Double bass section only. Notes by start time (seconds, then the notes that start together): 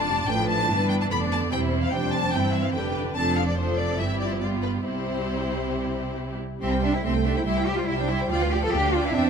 Already playing: F1
0.28 A1
0.69 G1
1.10 F1
1.51 E1
1.93 F1
2.34 G1
2.75 F1
3.17 F1
3.99 G1
4.85 C2
6.61 C2
7.04 C2
7.47 C2
7.88 C2
8.30 D2
8.72 D2
9.14 E2